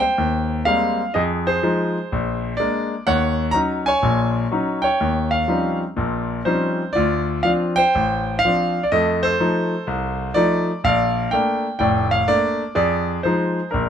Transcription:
0.00 0.94 C5 medium
0.00 0.61 G5 loud
0.18 0.60 D#2 medium
0.65 1.00 G3 medium
0.65 1.00 G#3 soft
0.65 1.00 A#3 soft
0.65 1.01 C4 medium
0.65 1.11 F5 medium
1.14 1.57 F2 medium
1.14 1.46 G#4 medium
1.14 1.21 D#5 medium
1.47 2.55 G#4 medium
1.47 2.62 C5 medium
1.63 1.97 F3 medium
1.63 1.97 G#3 soft
1.63 1.97 D#4 medium
2.12 2.53 A#1 medium
2.57 2.93 G#3 medium
2.57 2.93 A#3 medium
2.57 2.93 D4 medium
2.57 3.02 D5 medium
3.07 3.49 D#2 medium
3.07 3.87 C#5 medium
3.07 3.56 F#5 loud
3.51 3.88 F#3 medium
3.51 3.89 C#4 medium
3.51 3.88 D#4 medium
3.51 3.59 A#5 loud
3.86 4.80 C#5 medium
3.86 4.46 G#5 loud
4.03 4.44 A#1 medium
4.03 4.44 A#2 medium
4.51 4.85 F#3 medium
4.51 4.86 C#4 soft
4.51 4.86 D#4 medium
4.82 5.77 C#5 medium
4.82 5.32 G5 medium
5.01 5.42 D#2 medium
5.31 5.76 F5 medium
5.48 5.82 F3 soft
5.48 5.82 G3 soft
5.48 5.82 C4 soft
5.48 5.82 C#4 soft
5.48 5.83 D#4 soft
5.97 6.40 A#1 medium
5.97 6.39 A#2 medium
6.45 6.81 F3 soft
6.45 6.81 G3 soft
6.45 6.81 C4 soft
6.45 6.81 C#4 soft
6.45 6.81 D#4 medium
6.45 6.92 C5 medium
6.93 7.39 D2 medium
6.93 7.90 F4 medium
6.93 7.45 D5 medium
7.43 7.79 F3 medium
7.43 7.80 C4 soft
7.43 7.80 D4 medium
7.43 7.51 F5 medium
7.76 8.71 C5 medium
7.76 8.38 G5 loud
7.95 8.37 A1 medium
8.39 8.82 F5 loud
8.45 8.78 F3 medium
8.45 8.78 C4 soft
8.45 8.78 D4 medium
8.83 8.89 D5 medium
8.92 9.33 F2 medium
8.92 9.33 A3 medium
8.92 9.23 A4 medium
8.92 9.25 D#5 medium
9.23 10.32 A4 medium
9.23 10.39 C5 loud
9.40 9.74 F3 medium
9.40 9.74 A3 soft
9.40 9.74 D#4 medium
9.87 10.29 C2 medium
10.34 10.70 F3 medium
10.34 10.70 A3 medium
10.34 10.70 D#4 medium
10.34 10.80 D5 loud
10.84 11.25 A#1 medium
10.84 11.77 D5 medium
10.84 11.33 F5 loud
11.31 11.66 A3 medium
11.31 11.66 A#3 medium
11.31 11.66 D4 medium
11.31 11.76 G5 medium
11.79 12.21 F1 medium
11.79 12.22 A2 medium
11.79 12.26 D5 medium
11.79 12.09 G5 medium
12.11 12.28 F5 medium
12.28 12.62 A3 medium
12.28 12.61 A#3 medium
12.28 12.62 D4 medium
12.28 12.74 D5 loud
12.75 13.17 F2 medium
12.75 13.68 G#4 medium
12.75 13.20 D5 medium
13.23 13.59 F3 medium
13.23 13.59 G#3 soft
13.23 13.59 D#4 medium
13.23 13.69 C5 medium
13.71 13.89 A#1 medium
13.71 13.89 D4 soft
13.71 13.89 A#4 medium

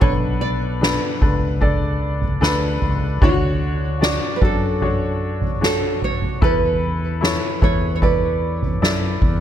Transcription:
0.01 0.98 B1 loud
0.01 1.18 B2 medium
0.01 0.77 D4 medium
0.01 0.78 A4 medium
0.01 0.78 B4 medium
0.01 0.12 C#5 loud
0.01 kick loud
0.01 floor tom medium
0.41 2.78 D5 medium
0.81 1.19 D4 medium
0.81 1.20 A4 medium
0.81 1.20 B4 medium
0.81 snare loud
1.21 2.38 C#2 medium
1.21 1.59 D4 medium
1.21 1.60 A4 medium
1.21 1.60 B4 medium
1.21 kick medium
1.21 floor tom medium
1.61 2.37 D4 medium
1.61 2.38 A4 medium
1.61 2.38 D5 medium
1.61 kick medium
1.61 floor tom medium
2.22 floor tom medium
2.41 2.79 D2 medium
2.41 3.17 D4 medium
2.41 3.18 A4 medium
2.41 3.18 B4 medium
2.41 snare medium
2.82 3.19 C#2 medium
2.82 floor tom medium
3.21 4.18 D2 medium
3.21 4.38 D3 medium
3.21 3.98 D4 medium
3.21 3.98 F#4 medium
3.21 4.03 F#4 medium
3.21 3.99 C#5 loud
3.21 kick loud
3.21 floor tom medium
4.01 4.39 D4 medium
4.01 4.36 E4 medium
4.01 4.40 F#4 medium
4.01 4.40 D5 medium
4.01 snare loud
4.36 4.43 B4 medium
4.41 6.38 F#2 medium
4.41 4.79 D4 medium
4.41 4.80 F#4 medium
4.41 4.80 A4 medium
4.41 kick medium
4.41 floor tom medium
4.45 5.63 A4 medium
4.81 5.58 D4 medium
4.81 5.58 F#4 medium
4.81 5.58 C#5 medium
4.81 floor tom medium
5.42 floor tom medium
5.61 6.38 D4 medium
5.61 6.38 F#4 medium
5.61 6.04 A4 medium
5.61 6.38 C#5 medium
5.61 snare loud
6.02 6.40 C#5 medium
6.02 floor tom medium
6.22 floor tom medium
6.41 7.38 E2 loud
6.41 7.58 E3 medium
6.41 7.18 E4 medium
6.41 7.18 A4 medium
6.41 7.18 B4 medium
6.41 7.63 B4 loud
6.41 kick loud
6.41 floor tom loud
7.21 7.59 E4 medium
7.21 7.60 A4 medium
7.21 7.60 C#5 medium
7.21 snare loud
7.61 8.78 E2 medium
7.61 8.00 E4 medium
7.61 8.00 A4 medium
7.61 8.00 B4 medium
7.61 7.94 C#5 medium
7.61 kick medium
7.61 floor tom medium
7.96 8.02 C#5 medium
8.02 8.78 E4 medium
8.02 8.78 A4 medium
8.02 9.18 B4 medium
8.02 8.78 D5 medium
8.02 kick medium
8.02 floor tom medium
8.62 floor tom medium
8.82 9.19 F#2 medium
8.82 9.40 E4 medium
8.82 9.40 A4 medium
8.82 9.40 D5 medium
8.82 snare medium
9.22 9.40 E2 medium
9.22 kick medium
9.22 floor tom medium

